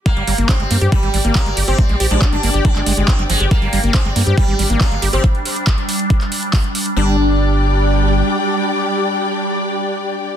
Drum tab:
HH |xxoxxxoxxxoxxxox|xxoxxxoxxxoxxxox|xxoxxxoxxxoxxxox|xxoxxxoxxxoxoxox|
CP |----x-------x---|----x----x--x---|----x-------x---|----x----x--x---|
BD |o---o---o---o---|o---o---o---o---|o---o---o---o---|o---o---o---o---|

HH |----------------|----------------|
CP |----------------|----------------|
BD |----------------|----------------|